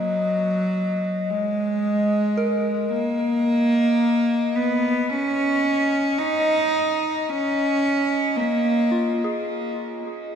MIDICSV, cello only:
0, 0, Header, 1, 2, 480
1, 0, Start_track
1, 0, Tempo, 1090909
1, 1287, Time_signature, 4, 2, 24, 8
1, 4555, End_track
2, 0, Start_track
2, 0, Title_t, "Cello"
2, 0, Program_c, 0, 42
2, 0, Note_on_c, 0, 54, 81
2, 575, Note_on_c, 0, 56, 83
2, 582, Note_off_c, 0, 54, 0
2, 1285, Note_off_c, 0, 56, 0
2, 1287, Note_on_c, 0, 58, 98
2, 2006, Note_on_c, 0, 59, 88
2, 2013, Note_off_c, 0, 58, 0
2, 2241, Note_on_c, 0, 61, 91
2, 2248, Note_off_c, 0, 59, 0
2, 2722, Note_on_c, 0, 63, 94
2, 2729, Note_off_c, 0, 61, 0
2, 3206, Note_on_c, 0, 61, 94
2, 3213, Note_off_c, 0, 63, 0
2, 3678, Note_on_c, 0, 58, 86
2, 3684, Note_off_c, 0, 61, 0
2, 4162, Note_off_c, 0, 58, 0
2, 4555, End_track
0, 0, End_of_file